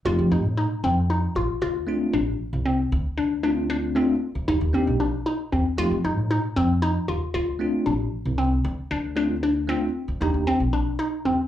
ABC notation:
X:1
M:11/8
L:1/16
Q:1/4=115
K:Dphr
V:1 name="Synth arpeggio sound"
F2 E2 E2 C2 E2 F2 F4 D4 C2- | C2 D2 D2 D2 C4 E2 C2 D2 E2 C2 | F2 E2 E2 C2 E2 F2 F4 D4 C2- | C2 D2 D2 D2 C4 E2 C2 D2 E2 C2 |]
V:2 name="Tine electric piano"
[A,CEG]2 z12 [A,CDF]2 z6 | z4 [A,CDF]4 [A,CDF]2 z4 [B,DEG]2 z6 | [A,CEG]2 z12 [A,CDF]2 z6 | z4 [A,CDF]2 z2 [A,CDF]2 z2 [B,DEG]2 z8 |]
V:3 name="Upright bass" clef=bass
F,, F, F,, A,,2 z F,,4 A,,, z D,,2 z2 A,,,2 z C,,3 | D,, z D,,8 z D,, E,, E,, z B,,,2 z3 E,, z | F,, F, F,, A,,2 z F,,4 E,, z D,,2 z2 A,,,2 z C,,3 | D,, z D,,8 z D,, E,, E,, z B,,,2 z3 E,, z |]